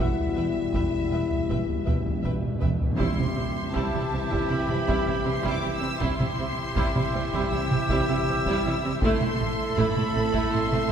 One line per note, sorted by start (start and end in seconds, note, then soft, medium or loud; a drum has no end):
0.00 2.64 B2 medium
0.00 2.64 G3 medium
0.00 2.25 E4 medium
0.00 2.21 E5 medium
0.00 0.08 G5 soft
0.18 0.27 E2 soft
0.18 taiko low soft
0.28 0.35 E2 soft
0.35 0.43 E1 soft
0.35 0.44 E2 soft
0.35 0.43 B4 soft
0.35 0.44 E5 soft
0.35 0.46 G5 soft
0.51 0.58 E2 soft
0.59 0.65 E2 soft
0.67 0.73 E2 soft
0.73 0.81 E1 medium
0.73 0.80 E2 soft
0.73 0.83 E2 medium
0.73 0.82 B4 soft
0.73 0.82 E5 soft
0.73 0.83 G5 soft
0.73 taiko medium
0.81 0.88 E2 soft
0.89 0.96 E2 soft
0.97 1.03 E2 soft
1.04 1.10 E2 soft
1.11 1.19 E1 medium
1.11 1.17 E2 soft
1.11 1.20 E2 soft
1.11 1.20 B4 soft
1.11 1.20 E5 soft
1.11 1.20 G5 soft
1.18 1.25 E2 soft
1.26 1.32 E2 soft
1.31 1.40 E2 soft
1.31 taiko low soft
1.41 1.48 E2 soft
1.49 1.57 E1 medium
1.49 1.57 E2 medium
1.49 1.55 E2 medium
1.49 1.58 B4 soft
1.49 1.58 E5 medium
1.49 1.58 G5 soft
1.49 taiko medium
1.56 1.62 E2 medium
1.64 1.70 E2 medium
1.69 1.78 E2 soft
1.69 taiko low soft
1.80 1.85 E2 soft
1.86 1.95 E1 medium
1.86 1.93 E2 medium
1.86 1.95 E2 medium
1.86 1.94 B4 soft
1.86 1.94 E5 soft
1.86 1.95 G5 soft
1.86 taiko low medium
1.94 2.00 E2 medium
2.02 2.07 E2 medium
2.07 2.15 E2 medium
2.07 taiko low soft
2.16 2.23 E2 medium
2.23 2.33 E1 soft
2.23 2.30 E2 medium
2.23 2.32 E2 soft
2.23 2.31 B4 soft
2.23 2.31 E5 soft
2.23 2.33 G5 soft
2.23 taiko medium
2.31 2.38 E2 medium
2.39 2.46 E2 medium
2.47 2.54 E2 medium
2.55 2.61 E2 medium
2.60 2.70 E1 medium
2.60 2.70 E2 soft
2.60 2.68 E2 medium
2.60 2.68 B4 soft
2.60 2.68 E5 soft
2.60 2.70 G5 soft
2.60 taiko low medium
2.69 2.75 E2 medium
2.77 2.83 E2 medium
2.81 2.90 E2 medium
2.81 taiko low soft
2.92 2.99 E2 medium
2.97 3.07 C2 medium
2.97 3.07 C3 medium
2.97 5.97 C3 medium
2.97 5.97 E3 medium
2.97 3.15 G3 medium
2.97 5.97 C4 medium
2.97 3.15 E4 medium
2.97 5.97 E4 medium
2.97 5.97 G4 medium
2.97 5.97 E5 medium
2.97 3.70 C6 medium
2.97 taiko medium
3.01 5.98 E4 medium
3.16 3.26 C3 soft
3.16 3.24 G3 soft
3.16 3.24 E4 soft
3.16 taiko mid soft
3.35 3.46 C2 soft
3.35 3.44 C3 soft
3.35 3.43 G3 soft
3.35 3.43 C4 soft
3.73 3.83 C2 medium
3.73 3.82 C3 medium
3.73 3.92 G3 medium
3.73 3.92 E4 medium
3.73 4.50 A5 medium
3.73 taiko medium
3.93 4.01 C3 medium
3.93 4.01 G3 soft
3.93 4.01 E4 soft
3.93 taiko mid medium
4.11 4.20 C2 medium
4.11 4.19 C3 soft
4.11 4.19 G3 soft
4.11 4.20 C4 soft
4.30 4.39 C3 medium
4.30 4.48 G3 medium
4.30 4.48 E4 medium
4.30 taiko medium
4.50 4.58 C2 medium
4.50 4.57 C3 soft
4.50 4.57 G3 medium
4.50 4.57 E4 medium
4.50 5.26 B5 medium
4.67 4.76 C3 soft
4.67 4.76 G3 medium
4.67 4.75 C4 medium
4.67 taiko mid soft
4.87 4.96 C2 medium
4.87 4.95 C3 medium
4.87 5.05 G3 medium
4.87 5.05 E4 medium
4.87 taiko medium
5.06 5.15 C3 soft
5.06 5.14 G3 soft
5.06 5.14 E4 soft
5.25 5.33 C2 soft
5.25 5.33 C3 soft
5.25 5.32 G3 medium
5.25 5.32 C4 medium
5.25 5.51 C6 medium
5.42 5.52 C3 medium
5.42 5.61 G3 medium
5.42 5.61 E4 medium
5.42 taiko medium
5.52 5.76 D6 medium
5.62 5.71 C2 medium
5.62 5.71 C3 medium
5.62 5.70 G3 medium
5.62 5.70 E4 medium
5.75 6.00 E6 medium
5.81 5.89 C3 soft
5.81 5.88 G3 medium
5.81 5.88 C4 medium
5.99 6.08 C2 medium
5.99 6.09 C3 medium
5.99 8.98 C3 medium
5.99 8.98 E3 medium
5.99 6.18 G3 medium
5.99 8.83 C4 medium
5.99 6.18 E4 medium
5.99 8.83 E4 medium
5.99 8.98 E4 medium
5.99 8.99 G4 medium
5.99 8.98 E5 medium
5.99 7.51 C6 medium
5.99 taiko medium
6.19 6.27 C3 soft
6.19 6.27 G3 soft
6.19 6.27 E4 soft
6.19 taiko mid soft
6.38 6.46 C2 medium
6.38 6.47 C3 medium
6.38 6.45 G3 soft
6.38 6.46 C4 soft
6.75 6.83 C2 medium
6.75 6.83 C3 medium
6.75 6.93 G3 medium
6.75 6.93 E4 medium
6.75 taiko medium
6.94 7.02 C3 medium
6.94 7.02 G3 soft
6.94 7.02 E4 soft
6.94 taiko mid medium
7.14 7.21 C2 medium
7.14 7.21 C3 soft
7.14 7.21 G3 medium
7.14 7.22 C4 soft
7.32 7.40 C3 medium
7.32 7.50 G3 medium
7.32 7.50 E4 medium
7.32 taiko medium
7.51 7.58 C2 medium
7.51 7.59 C3 soft
7.51 7.59 G3 soft
7.51 7.59 E4 medium
7.51 8.99 E6 medium
7.70 7.77 C3 soft
7.70 7.78 G3 medium
7.70 7.78 C4 medium
7.70 taiko mid medium
7.89 7.97 C2 medium
7.89 7.96 C3 medium
7.89 8.07 G3 medium
7.89 8.07 E4 medium
7.89 taiko medium
8.08 8.16 C3 soft
8.08 8.17 G3 medium
8.08 8.17 E4 medium
8.27 8.34 C2 soft
8.27 8.35 C3 soft
8.27 8.35 G3 medium
8.27 8.35 C4 medium
8.46 8.54 C3 medium
8.46 8.63 G3 medium
8.46 8.63 E4 medium
8.46 taiko medium
8.65 8.72 C2 soft
8.65 8.73 C3 medium
8.65 8.73 G3 medium
8.65 8.73 E4 medium
8.84 8.92 C3 medium
8.84 8.91 G3 medium
8.84 8.91 C4 medium
9.00 9.09 A1 medium
9.00 10.92 A2 medium
9.00 9.10 A2 medium
9.00 10.92 A3 medium
9.00 10.92 C4 medium
9.00 10.92 E4 medium
9.00 10.92 A4 medium
9.00 10.92 E5 medium
9.00 9.76 C6 medium
9.00 taiko medium
9.04 9.20 A3 medium
9.04 9.21 E4 medium
9.20 9.28 A2 medium
9.20 9.29 A3 soft
9.20 9.29 E4 soft
9.20 taiko mid medium
9.40 9.47 A1 medium
9.40 9.48 A2 medium
9.40 9.48 A3 soft
9.40 9.48 C4 soft
9.77 9.85 A1 medium
9.77 9.85 A2 medium
9.77 9.94 A3 medium
9.77 9.93 E4 medium
9.77 10.52 B5 medium
9.77 taiko medium
9.95 10.04 A2 medium
9.95 10.03 A3 soft
9.95 10.02 E4 medium
9.95 taiko mid soft
10.14 10.23 A1 medium
10.14 10.24 A2 medium
10.14 10.21 A3 medium
10.14 10.22 C4 medium
10.32 10.42 A2 medium
10.32 10.49 A3 medium
10.32 10.49 E4 medium
10.32 taiko medium
10.50 10.60 A1 medium
10.50 10.61 A2 medium
10.50 10.58 A3 medium
10.50 10.58 E4 medium
10.50 10.92 C6 medium
10.70 10.80 A2 medium
10.70 10.79 A3 medium
10.70 10.78 C4 medium
10.70 taiko mid soft